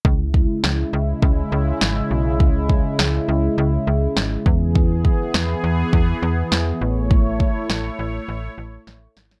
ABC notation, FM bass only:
X:1
M:4/4
L:1/8
Q:1/4=102
K:C#m
V:1 name="FM bass" clef=bass
C,,2 C,, C,, C,, C,, G,,, B,,, | C,,2 C,, C,, C,, C,, G,,, E,,- | E,,2 E,, E,, E,, E,, E,, A,,,- | A,,,2 A,,, A,,, A,,, A,,, A,,, G,,, |]